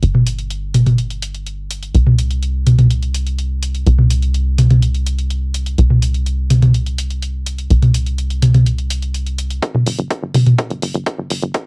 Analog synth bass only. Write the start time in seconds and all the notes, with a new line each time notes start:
0.03 G1
1.95 C2
3.87 C2
5.78 C2
7.70 C2
9.75 G1
9.86 G1
9.98 G1
10.22 G1
10.34 G1
10.46 A1
10.70 G1
10.82 G1
10.94 G1
11.18 G1
11.30 G1
11.42 G1